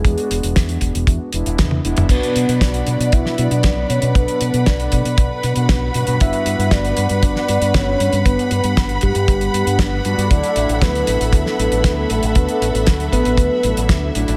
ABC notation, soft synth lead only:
X:1
M:4/4
L:1/16
Q:1/4=117
K:Bm
V:1 name="Soft synth lead"
^G12 z4 | B4 d4 e3 d3 c2 | B4 d8 z4 | e4 d4 d4 c4 |
B4 z2 G8 z2 | d4 B4 B6 A2 | B4 z2 B8 z2 |]